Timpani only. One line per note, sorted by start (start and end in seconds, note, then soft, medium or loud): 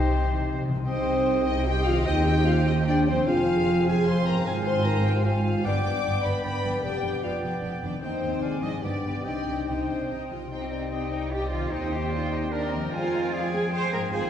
0.10 0.16 C3 soft
0.18 0.24 C3 soft
0.25 0.31 C3 soft
0.32 0.38 C3 medium
0.39 0.45 C3 medium
0.46 0.53 C3 medium
0.54 0.60 C3 medium
0.61 0.68 C3 medium
0.69 0.75 C3 medium
0.76 0.83 C3 medium
0.86 1.42 C3 medium